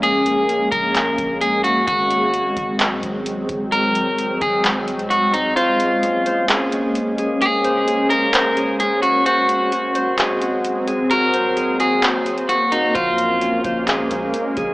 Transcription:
<<
  \new Staff \with { instrumentName = "Harp" } { \time 4/4 \key bes \minor \tempo 4 = 130 r1 | r1 | r1 | c''4 des'8 c''8 aes'8 des'4 aes'8 |
des'8 c''8 aes'8 des'8 c''8 aes'8 des'4 | c''4 ges'8 c''8 aes'8 ges'4 aes'8 | ges'8 c''8 aes'8 ges'8 c''8 aes'8 ges'4 | c''4 des'8 c''8 aes'8 des'4 aes'8 | }
  \new Staff \with { instrumentName = "Clean electric guitar" } { \time 4/4 \key bes \minor aes'4. bes'4. aes'8 ges'8 | ges'2 r2 | bes'4. aes'8 r4 ges'8 ees'8 | f'2 r2 |
aes'4. bes'4. aes'8 ges'8 | ges'2 r2 | bes'4. aes'8 r4 ges'8 ees'8 | f'2 r2 | }
  \new Staff \with { instrumentName = "Ambient pad" } { \time 4/4 \key bes \minor << { <aes bes des'>1 | <ges c'>1~ | <ges c'>1 | des'1~ |
des'1 | <ges c'>1~ | <ges c'>1 | <aes des'>1 | } \\ { r1 | r1 | r1 | bes1~ |
bes1 | aes1 | bes1~ | bes1 | } >> }
  \new Staff \with { instrumentName = "808-style bass" } { \clef bass \time 4/4 \key bes \minor bes,,4. bes,,4 bes,,4. | aes,,4. aes,,8. c,16 aes,,4 aes,,8~ | aes,,4. aes,,4~ aes,,16 c,4~ c,16 | r1 |
r1 | r1 | r1 | bes,,4. bes,,4 bes,,8 r8 bes,,8 | }
  \new DrumStaff \with { instrumentName = "Drums" } \drummode { \time 4/4 hh8 hh8 hh8 <hh bd>8 <hc hh>8 <hh bd>8 hh8 hh8 | <hh bd>8 hh8 hh8 <hh bd>8 <hc hh>8 hh8 hh8 <hh bd>8 | hh8 hh8 hh8 <hh bd>8 <hc hh>8 hh16 hh16 hh8 hh8 | hh8 hh8 hh8 hh8 <hc hh>8 hh8 hh8 hh8 |
hh8 hh8 hh8 hh8 <hc hh>8 hh8 hh8 hh8 | hh8 hh8 hh8 hh8 <hc hh>8 hh8 hh8 hh8 | hh8 hh8 hh8 hh8 <hc hh>8 hh16 hh16 hh8 hh8 | <hh bd>8 hh8 hh8 <hh bd>8 <hc hh>8 hh8 hh8 <hh bd>8 | }
>>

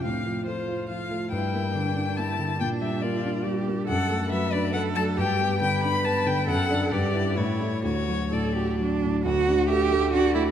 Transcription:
<<
  \new Staff \with { instrumentName = "Violin" } { \time 3/4 \key g \dorian \tempo 4 = 139 f''4 c''4 f''4 | g''2 a''4 | g''8 e''8 d''4 r4 | \key d \major fis''4 e''8 d''8 fis''8 a''8 |
g''4 g''8 b''8 a''8 g''8 | fis''4 d''4 cis''4 | cis''4 d''4 r4 | fis''4 e''4 d''4 | }
  \new Staff \with { instrumentName = "Cello" } { \time 3/4 \key g \dorian c'4 f'2 | e'4 d'4 e'4 | d'4 f'4 g'4 | \key d \major a'4 b'4 a'4 |
g'4 b'2 | a'4 g'4 e'4 | fis'4 a'8 g'8 d'4 | fis'4 g'4 fis'8 e'8 | }
  \new Staff \with { instrumentName = "Grand piano" } { \time 3/4 \key g \dorian a,8 f8 a8 f'8 f8 a8 | g,8 bes8 d8 d'8 bes8 d8 | bes,8 g8 bes8 d'8 g8 bes8 | \key d \major fis,8 a8 fis8 d'8 a8 fis8 |
g,8 b8 d8 d'8 b8 d8 | fis,8 <d' d''>8 g,8 <e' b'>8 a,8 <e' a'>8 | d,8 fis8 a,8 fis'8 fis8 a,8 | d,8 d'8 a'8 a8 d'8 a8 | }
>>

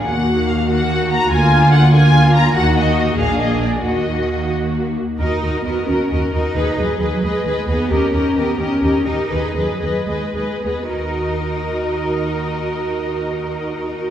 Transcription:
<<
  \new Staff \with { instrumentName = "Violin section" } { \time 6/8 \key ees \minor \tempo 4. = 89 ges''4 f''8 ges''4 bes''8 | aes''4 ges''8 aes''4 bes''8 | ges''8 ees''4 f''8 ees''8 d''8 | ees''4. r4. |
ees''8 ees''8 ees''8 ees''8 ees''8 ees''8 | ees''8 ees''8 ees''8 ees''8 ees''8 ees''8 | ees''8 ees''8 ees''8 ees''8 ees''8 ees''8 | ees''8 ees''8 ees''8 ees''8 ees''8 ees''8 |
ees''2.~ | ees''2. | }
  \new Staff \with { instrumentName = "Violin section" } { \time 6/8 \key ees \minor r4. ges'4. | f'4. f'4. | ges'4. aes'4. | ges'2~ ges'16 r8. |
bes'8 bes'8 bes'8 bes'8 bes'8 bes'8 | ces''8 ces''8 ces''8 ces''8 ces''8 ces''8 | bes'8 bes'8 bes'8 bes'8 bes'8 bes'8 | ces''8 ces''8 ces''8 ces''8 ces''8 ces''8 |
bes'2.~ | bes'2. | }
  \new Staff \with { instrumentName = "Viola section" } { \time 6/8 \key ees \minor << { bes4. bes4. | bes4. bes4. | bes4. bes4. | bes2~ bes8 r8 |
ges'8 ges'8 ges'8 ges'8 ges'8 ges'8 | aes'8 aes'8 aes'8 aes'8 aes'8 aes'8 | g'8 g'8 g'8 g'8 g'8 g'8 | aes'8 aes'8 aes'8 aes'8 aes'8 aes'8 |
ges'2.~ | ges'2. | } \\ { ges'4. ges'4. | f'4. f'4. | ges'8. ees'8. d'4. | ges'2~ ges'8 r8 |
r2. | r2. | r2. | r2. |
r2. | r2. | } >> }
  \new Staff \with { instrumentName = "Cello section" } { \time 6/8 \key ees \minor ees2. | d2. | ees4. bes,4. | ees2~ ees8 r8 |
ees'4 ces'8 des'4 ees'8~ | ees'8 ges4 aes4 ces'8 | des'4 ces'8 des'4 ees'8~ | ees'8 ges4 aes4 ces'8 |
ees'2.~ | ees'2. | }
  \new Staff \with { instrumentName = "Double bass section" } { \clef bass \time 6/8 \key ees \minor ees,2. | d,2. | ees,4. bes,,4. | ees,2~ ees,8 r8 |
ees,8 ees,8 ees,8 ees,8 ees,8 ees,8 | ees,8 ees,8 ees,8 ees,8 ees,8 ees,8 | ees,8 ees,8 ees,8 ees,8 ees,8 ees,8 | ees,8 ees,8 ees,8 ees,8 ees,8 ees,8 |
ees,2.~ | ees,2. | }
>>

